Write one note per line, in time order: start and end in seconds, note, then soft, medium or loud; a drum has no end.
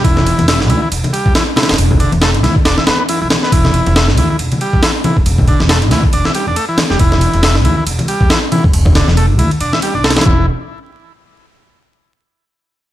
0.04 0.31 E1 loud
0.04 0.47 E3 medium
0.04 kick loud
0.04 ride medium
0.17 snare soft
0.17 low conga medium
0.27 ride medium
0.39 0.70 E1 loud
0.39 ride soft
0.39 high conga loud
0.48 0.60 E4 medium
0.48 snare loud
0.48 ride medium
0.60 snare soft
0.70 0.78 D2 loud
0.70 0.81 E3 medium
0.70 ride medium
0.82 0.89 E3 medium
0.92 0.99 E1 medium
0.92 ride medium
1.04 ride soft
1.04 high conga medium
1.04 low conga medium
1.13 1.34 G3 medium
1.13 ride medium
1.26 1.32 E2 loud
1.26 kick medium
1.35 1.44 E3 medium
1.35 snare loud
1.35 ride medium
1.56 1.68 E3 medium
1.56 snare medium
1.56 ride medium
1.56 high conga medium
1.56 low conga medium
1.63 snare medium
1.63 ride medium
1.69 1.75 E1 medium
1.69 snare medium
1.69 ride medium
1.74 snare medium
1.74 ride medium
1.78 2.05 E1 loud
1.78 ride medium
1.91 kick loud
1.91 low conga medium
2.00 2.12 D3 loud
2.00 ride medium
2.12 2.44 E1 loud
2.12 ride soft
2.12 high conga medium
2.22 2.31 A3 medium
2.22 snare loud
2.22 ride medium
2.34 ride soft
2.43 2.51 D2 medium
2.43 2.55 E3 medium
2.43 snare soft
2.43 ride medium
2.56 kick medium
2.65 2.73 E1 medium
2.65 2.77 D4 medium
2.65 snare loud
2.65 ride medium
2.78 2.84 E4 medium
2.78 snare medium
2.78 high conga medium
2.87 3.14 E2 loud
2.87 2.98 B3 medium
2.87 snare loud
2.87 ride medium
2.99 3.03 B3 loud
3.09 3.20 E3 loud
3.09 ride medium
3.22 3.27 B1 medium
3.22 3.28 E3 medium
3.30 snare loud
3.30 ride medium
3.30 high conga medium
3.43 3.52 B3 medium
3.43 snare soft
3.52 3.79 E1 loud
3.52 3.95 E3 medium
3.52 kick loud
3.52 ride medium
3.64 snare soft
3.64 low conga medium
3.74 ride medium
3.86 4.18 E1 loud
3.86 ride soft
3.86 high conga loud
3.96 4.08 E4 medium
3.96 snare loud
3.96 ride medium
4.08 snare soft
4.17 4.25 D2 medium
4.17 4.29 E3 medium
4.17 ride medium
4.30 4.37 E3 medium
4.39 4.47 E1 medium
4.39 ride medium
4.52 ride soft
4.52 high conga medium
4.52 low conga medium
4.61 4.82 G3 medium
4.61 ride medium
4.73 4.79 E2 loud
4.73 kick loud
4.83 4.91 E3 medium
4.83 snare loud
4.83 ride medium
5.04 5.16 E3 medium
5.04 ride medium
5.04 high conga loud
5.04 low conga medium
5.17 5.23 E1 medium
5.17 kick medium
5.26 5.53 E1 loud
5.26 ride medium
5.38 kick loud
5.38 low conga medium
5.48 5.60 D3 loud
5.48 kick loud
5.48 ride medium
5.60 5.91 E1 loud
5.60 snare medium
5.60 high conga medium
5.69 5.78 A3 medium
5.69 snare loud
5.69 ride medium
5.82 ride soft
5.91 5.99 D2 loud
5.91 6.03 E3 medium
5.91 snare soft
5.91 ride medium
6.04 kick medium
6.13 6.21 E1 medium
6.13 6.25 D4 medium
6.13 ride medium
6.24 6.32 E4 medium
6.24 snare medium
6.24 high conga medium
6.35 6.46 G3 medium
6.35 ride medium
6.47 6.53 E2 medium
6.47 6.56 D4 medium
6.56 6.65 A3 medium
6.56 ride medium
6.69 6.78 E3 medium
6.78 snare loud
6.78 ride medium
6.78 high conga loud
6.90 6.96 E1 medium
6.90 6.99 G3 loud
6.90 snare soft
6.99 7.27 E1 loud
6.99 7.42 E3 medium
6.99 kick loud
6.99 ride medium
7.12 snare soft
7.12 low conga medium
7.21 ride medium
7.34 7.65 E1 loud
7.34 ride soft
7.34 high conga medium
7.43 7.56 E4 medium
7.43 snare loud
7.43 ride medium
7.55 snare soft
7.65 7.73 D2 loud
7.65 7.76 E3 medium
7.65 ride medium
7.77 7.84 E3 medium
7.87 7.95 E1 medium
7.87 ride medium
7.99 ride soft
7.99 high conga medium
7.99 low conga medium
8.08 8.29 G3 medium
8.08 ride medium
8.21 8.27 E2 loud
8.21 kick loud
8.30 8.39 E3 medium
8.30 snare loud
8.30 ride loud
8.52 8.64 E3 medium
8.52 ride medium
8.52 high conga loud
8.52 low conga medium
8.64 8.70 E1 medium
8.64 kick loud
8.73 9.00 E1 loud
8.73 ride medium
8.85 kick loud
8.85 low conga loud
8.95 9.07 D3 loud
8.95 snare loud
8.95 ride medium
9.08 9.39 E1 loud
9.08 snare soft
9.08 high conga medium
9.17 9.26 A3 medium
9.17 ride medium
9.39 9.47 D2 medium
9.39 9.51 E3 medium
9.39 ride medium
9.51 ride soft
9.61 9.69 E1 medium
9.61 9.73 D4 medium
9.61 ride medium
9.73 9.80 E4 medium
9.73 snare medium
9.73 high conga medium
9.82 9.94 G3 medium
9.82 ride medium
9.95 10.20 B1 loud
9.95 10.04 D4 medium
10.04 10.13 A3 medium
10.04 snare medium
10.04 ride medium
10.10 snare medium
10.10 ride medium
10.16 10.25 E3 medium
10.16 snare medium
10.16 ride medium
10.21 snare medium
10.21 ride medium
10.25 10.46 E1 loud
10.25 10.46 E3 medium
10.25 kick loud
10.25 high conga loud